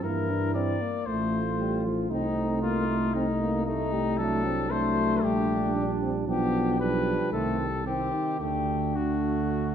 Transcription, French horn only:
0, 0, Header, 1, 2, 480
1, 0, Start_track
1, 0, Tempo, 520382
1, 32, Time_signature, 4, 2, 24, 8
1, 6273, Tempo, 539568
1, 8896, End_track
2, 0, Start_track
2, 0, Title_t, "French horn"
2, 0, Program_c, 0, 60
2, 38, Note_on_c, 0, 58, 34
2, 274, Note_on_c, 0, 62, 39
2, 288, Note_off_c, 0, 58, 0
2, 505, Note_on_c, 0, 60, 39
2, 518, Note_off_c, 0, 62, 0
2, 745, Note_on_c, 0, 58, 38
2, 759, Note_off_c, 0, 60, 0
2, 983, Note_off_c, 0, 58, 0
2, 989, Note_on_c, 0, 57, 43
2, 1290, Note_off_c, 0, 57, 0
2, 1460, Note_on_c, 0, 55, 40
2, 1701, Note_on_c, 0, 53, 43
2, 1715, Note_off_c, 0, 55, 0
2, 1938, Note_off_c, 0, 53, 0
2, 1943, Note_on_c, 0, 60, 44
2, 2411, Note_off_c, 0, 60, 0
2, 2424, Note_on_c, 0, 58, 47
2, 2652, Note_off_c, 0, 58, 0
2, 2657, Note_on_c, 0, 57, 42
2, 2892, Note_off_c, 0, 57, 0
2, 2904, Note_on_c, 0, 60, 48
2, 3010, Note_off_c, 0, 60, 0
2, 3144, Note_on_c, 0, 58, 44
2, 3382, Note_on_c, 0, 57, 43
2, 3395, Note_off_c, 0, 58, 0
2, 3618, Note_on_c, 0, 55, 45
2, 3632, Note_off_c, 0, 57, 0
2, 3857, Note_off_c, 0, 55, 0
2, 3867, Note_on_c, 0, 57, 46
2, 4104, Note_on_c, 0, 60, 43
2, 4118, Note_off_c, 0, 57, 0
2, 4333, Note_off_c, 0, 60, 0
2, 4339, Note_on_c, 0, 57, 61
2, 5286, Note_off_c, 0, 57, 0
2, 5307, Note_on_c, 0, 62, 46
2, 5416, Note_off_c, 0, 62, 0
2, 5553, Note_on_c, 0, 60, 49
2, 5661, Note_off_c, 0, 60, 0
2, 5790, Note_on_c, 0, 59, 44
2, 6263, Note_off_c, 0, 59, 0
2, 6267, Note_on_c, 0, 55, 51
2, 6742, Note_on_c, 0, 57, 48
2, 6756, Note_off_c, 0, 55, 0
2, 6973, Note_off_c, 0, 57, 0
2, 6978, Note_on_c, 0, 55, 39
2, 7213, Note_off_c, 0, 55, 0
2, 7219, Note_on_c, 0, 60, 37
2, 7454, Note_off_c, 0, 60, 0
2, 7460, Note_on_c, 0, 63, 41
2, 7694, Note_off_c, 0, 63, 0
2, 7699, Note_on_c, 0, 62, 42
2, 8896, Note_off_c, 0, 62, 0
2, 8896, End_track
0, 0, End_of_file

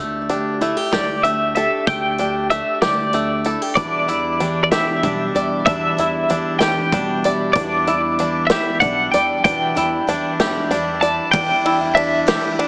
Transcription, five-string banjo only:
0, 0, Header, 1, 2, 480
1, 0, Start_track
1, 0, Tempo, 630252
1, 1429, Time_signature, 6, 3, 24, 8
1, 9656, End_track
2, 0, Start_track
2, 0, Title_t, "Five-string banjo"
2, 0, Program_c, 0, 105
2, 0, Note_on_c, 0, 57, 66
2, 226, Note_on_c, 0, 62, 57
2, 461, Note_off_c, 0, 57, 0
2, 470, Note_on_c, 0, 57, 55
2, 709, Note_on_c, 0, 67, 68
2, 938, Note_off_c, 0, 57, 0
2, 947, Note_on_c, 0, 57, 62
2, 1188, Note_off_c, 0, 62, 0
2, 1195, Note_on_c, 0, 69, 64
2, 1423, Note_off_c, 0, 57, 0
2, 1432, Note_on_c, 0, 57, 71
2, 1670, Note_off_c, 0, 67, 0
2, 1670, Note_on_c, 0, 62, 52
2, 1905, Note_off_c, 0, 57, 0
2, 1914, Note_on_c, 0, 57, 59
2, 2151, Note_on_c, 0, 67, 64
2, 2154, Note_off_c, 0, 69, 0
2, 2382, Note_off_c, 0, 57, 0
2, 2391, Note_on_c, 0, 57, 58
2, 2632, Note_off_c, 0, 62, 0
2, 2633, Note_on_c, 0, 69, 57
2, 2866, Note_off_c, 0, 69, 0
2, 2869, Note_on_c, 0, 62, 66
2, 2872, Note_off_c, 0, 57, 0
2, 2872, Note_off_c, 0, 67, 0
2, 3110, Note_on_c, 0, 64, 55
2, 3344, Note_off_c, 0, 62, 0
2, 3353, Note_on_c, 0, 62, 54
2, 3594, Note_on_c, 0, 67, 75
2, 3829, Note_off_c, 0, 62, 0
2, 3838, Note_on_c, 0, 62, 65
2, 4072, Note_off_c, 0, 64, 0
2, 4079, Note_on_c, 0, 74, 57
2, 4312, Note_off_c, 0, 62, 0
2, 4322, Note_on_c, 0, 62, 69
2, 4554, Note_off_c, 0, 67, 0
2, 4566, Note_on_c, 0, 64, 62
2, 4792, Note_off_c, 0, 62, 0
2, 4801, Note_on_c, 0, 62, 62
2, 5037, Note_off_c, 0, 74, 0
2, 5045, Note_on_c, 0, 67, 69
2, 5273, Note_off_c, 0, 62, 0
2, 5283, Note_on_c, 0, 62, 70
2, 5520, Note_off_c, 0, 64, 0
2, 5523, Note_on_c, 0, 74, 66
2, 5749, Note_off_c, 0, 62, 0
2, 5758, Note_on_c, 0, 62, 73
2, 5998, Note_on_c, 0, 64, 66
2, 5999, Note_off_c, 0, 67, 0
2, 6235, Note_off_c, 0, 62, 0
2, 6244, Note_on_c, 0, 62, 60
2, 6478, Note_off_c, 0, 74, 0
2, 6481, Note_on_c, 0, 67, 73
2, 6711, Note_off_c, 0, 62, 0
2, 6720, Note_on_c, 0, 62, 67
2, 6955, Note_off_c, 0, 64, 0
2, 6962, Note_on_c, 0, 74, 69
2, 7192, Note_off_c, 0, 62, 0
2, 7202, Note_on_c, 0, 62, 69
2, 7436, Note_off_c, 0, 67, 0
2, 7440, Note_on_c, 0, 64, 57
2, 7672, Note_off_c, 0, 62, 0
2, 7681, Note_on_c, 0, 62, 60
2, 7916, Note_off_c, 0, 74, 0
2, 7920, Note_on_c, 0, 67, 72
2, 8145, Note_off_c, 0, 62, 0
2, 8154, Note_on_c, 0, 62, 70
2, 8394, Note_off_c, 0, 64, 0
2, 8396, Note_on_c, 0, 74, 70
2, 8627, Note_off_c, 0, 62, 0
2, 8633, Note_off_c, 0, 74, 0
2, 8634, Note_off_c, 0, 67, 0
2, 8636, Note_on_c, 0, 62, 72
2, 8876, Note_on_c, 0, 64, 63
2, 9101, Note_off_c, 0, 62, 0
2, 9110, Note_on_c, 0, 62, 62
2, 9352, Note_on_c, 0, 67, 86
2, 9580, Note_off_c, 0, 62, 0
2, 9589, Note_on_c, 0, 62, 77
2, 9656, Note_off_c, 0, 62, 0
2, 9656, Note_off_c, 0, 64, 0
2, 9656, Note_off_c, 0, 67, 0
2, 9656, End_track
0, 0, End_of_file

